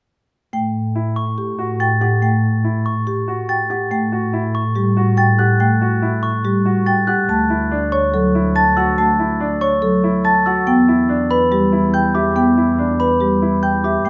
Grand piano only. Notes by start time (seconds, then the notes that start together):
0.95 E4
1.59 F#4
2.01 G4
2.64 E4
3.28 F#4
3.70 G4
4.12 F#4
4.33 E4
4.97 F#4
5.39 G4
5.81 F#4
6.02 E4
6.65 F#4
7.08 G4
7.50 E4
7.71 D4
8.35 E4
8.77 F#4
9.19 E4
9.40 D4
10.04 E4
10.46 F#4
10.88 E4
11.09 D4
11.72 E4
12.15 G4
12.57 E4
12.79 D4
13.42 E4
13.84 G4